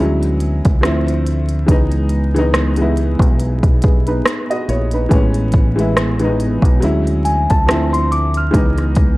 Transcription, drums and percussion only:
0.23 closed hi-hat
0.40 closed hi-hat
0.65 kick, closed hi-hat
0.83 finger snap, cross-stick, closed hi-hat
1.08 closed hi-hat
1.26 closed hi-hat
1.49 closed hi-hat
1.68 kick, closed hi-hat
1.92 closed hi-hat
2.09 closed hi-hat
2.36 closed hi-hat
2.54 finger snap, cross-stick, closed hi-hat
2.76 closed hi-hat
2.97 closed hi-hat
3.19 kick, closed hi-hat
3.40 closed hi-hat
3.63 kick, closed hi-hat
3.82 kick, closed hi-hat
4.07 closed hi-hat
4.25 finger snap, cross-stick, closed hi-hat
4.51 closed hi-hat
4.69 closed hi-hat
4.91 closed hi-hat
5.11 kick, closed hi-hat
5.34 closed hi-hat
5.52 kick, closed hi-hat
5.79 closed hi-hat
5.97 finger snap, cross-stick, closed hi-hat
6.19 closed hi-hat
6.40 closed hi-hat
6.62 kick, closed hi-hat
6.82 closed hi-hat
7.07 closed hi-hat
7.25 closed hi-hat
7.50 kick, closed hi-hat
7.69 finger snap, cross-stick, closed hi-hat
7.94 closed hi-hat
8.12 closed hi-hat
8.34 closed hi-hat
8.54 kick, closed hi-hat
8.78 cross-stick, closed hi-hat
8.95 kick, closed hi-hat

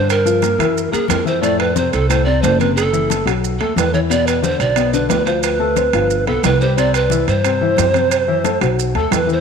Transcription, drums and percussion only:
0.09 high conga, high timbale, maracas
0.26 high conga, maracas
0.42 high conga, high timbale, low timbale, maracas
0.60 high conga, high timbale, maracas
0.76 high conga, maracas
0.93 high conga, high timbale, maracas
1.08 high conga, high timbale, low timbale, maracas
1.25 high conga, maracas
1.42 high conga, high timbale, maracas
1.59 high conga, high timbale
1.76 high conga, low timbale, maracas
1.93 high timbale, maracas
2.10 high conga, high timbale, maracas
2.27 high conga
2.43 high conga, high timbale, low timbale, maracas
2.60 high conga, high timbale, maracas
2.77 high timbale, maracas
2.94 high conga, maracas
3.10 high conga, high timbale, low timbale, maracas
3.27 high conga, high timbale, maracas
3.44 high conga, maracas
3.61 high conga, high timbale
3.77 high conga, high timbale, low timbale, maracas
3.93 high conga, maracas
4.10 high conga, high timbale, maracas
4.27 high conga, high timbale, maracas
4.44 high conga, low timbale, maracas
4.60 high timbale, maracas
4.76 high conga, high timbale, maracas
4.93 high conga, maracas
5.09 high conga, high timbale, low timbale, maracas
5.27 high timbale, maracas
5.43 high conga, high timbale, maracas
5.60 high conga
5.76 high conga, high timbale, low timbale, maracas
5.93 high conga, high timbale, maracas
6.10 high conga, maracas
6.27 high conga, high timbale
6.44 high conga, high timbale, low timbale, maracas
6.60 high conga, maracas
6.76 high conga, high timbale, maracas
6.93 high conga, high timbale, maracas
7.10 high conga, low timbale, maracas
7.28 high timbale, maracas
7.44 high conga, high timbale, maracas
7.60 high conga
7.77 high conga, high timbale, low timbale, maracas
7.94 high conga, high timbale, maracas
8.10 high conga, high timbale, maracas
8.27 high conga
8.45 high conga, high timbale, low timbale, maracas
8.61 high conga, high timbale, maracas
8.78 high conga, maracas
8.95 high conga, high timbale
9.12 high conga, high timbale, low timbale, maracas
9.28 high conga, maracas

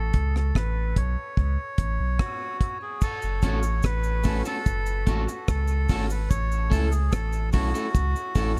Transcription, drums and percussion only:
0.14 kick, closed hi-hat
0.36 cross-stick
0.55 kick, cross-stick
0.96 kick, closed hi-hat
1.37 kick
1.78 kick, closed hi-hat
2.19 kick, cross-stick
2.61 kick, closed hi-hat
3.01 kick, crash, cabasa
3.22 cabasa
3.42 kick, closed hi-hat, cabasa
3.63 cabasa
3.83 kick, cross-stick, cabasa
4.03 cabasa
4.23 kick, open hi-hat, cabasa
4.45 cabasa
4.66 kick, hi-hat pedal, cabasa
4.86 cabasa
5.07 kick, closed hi-hat, cabasa
5.29 cabasa
5.48 kick, cross-stick, cabasa
5.67 cabasa
5.89 kick, open hi-hat, cabasa
6.10 cabasa
6.31 kick, hi-hat pedal, cabasa
6.52 cabasa
6.71 kick, open hi-hat, cabasa
6.92 cabasa
7.12 kick, cross-stick, hi-hat pedal, cabasa
7.33 cabasa
7.53 kick, open hi-hat, cabasa
7.75 cabasa
7.95 kick, hi-hat pedal, cabasa
8.16 cabasa
8.35 kick, open hi-hat, cabasa

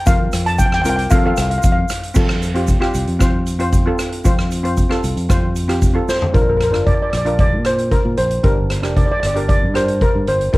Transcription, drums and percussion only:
0.06 kick, closed hi-hat, shaker
0.32 cross-stick, closed hi-hat, shaker
0.46 closed hi-hat
0.59 kick, closed hi-hat, shaker
0.72 cross-stick
0.85 closed hi-hat, shaker
0.99 closed hi-hat
1.10 kick, closed hi-hat, shaker
1.37 cross-stick, closed hi-hat, shaker
1.51 closed hi-hat
1.63 kick, closed hi-hat, shaker
1.89 cross-stick, closed hi-hat, shaker
2.03 closed hi-hat
2.15 kick, crash, shaker
2.29 cross-stick
2.42 closed hi-hat, shaker
2.56 closed hi-hat
2.68 kick, closed hi-hat, shaker
2.82 cross-stick
2.94 closed hi-hat, shaker
3.08 closed hi-hat
3.21 kick, cross-stick, closed hi-hat, shaker
3.47 closed hi-hat, shaker
3.60 closed hi-hat
3.72 kick, closed hi-hat, shaker
3.99 cross-stick, closed hi-hat, shaker
4.12 closed hi-hat
4.25 kick, closed hi-hat, shaker
4.39 cross-stick
4.51 closed hi-hat, shaker
4.65 closed hi-hat
4.77 kick, closed hi-hat, shaker
4.91 cross-stick
5.04 closed hi-hat, shaker
5.17 closed hi-hat
5.30 kick, cross-stick, closed hi-hat, shaker
5.56 closed hi-hat, shaker
5.69 cross-stick, closed hi-hat
5.82 kick, closed hi-hat, shaker
6.09 snare, shaker
6.22 floor tom
6.34 kick, closed hi-hat
6.61 cross-stick, closed hi-hat
6.74 cross-stick, closed hi-hat
6.87 kick, closed hi-hat
7.13 cross-stick, closed hi-hat
7.26 closed hi-hat
7.39 kick, closed hi-hat
7.65 cross-stick, closed hi-hat
7.78 closed hi-hat
7.91 kick, closed hi-hat
8.17 closed hi-hat
8.31 closed hi-hat
8.43 kick, closed hi-hat
8.70 cross-stick, closed hi-hat
8.83 cross-stick, closed hi-hat
8.96 kick, closed hi-hat
9.23 cross-stick, closed hi-hat
9.36 closed hi-hat
9.49 kick, closed hi-hat
9.75 cross-stick, closed hi-hat
9.88 closed hi-hat
10.01 kick, closed hi-hat
10.27 closed hi-hat
10.41 closed hi-hat
10.53 kick, closed hi-hat

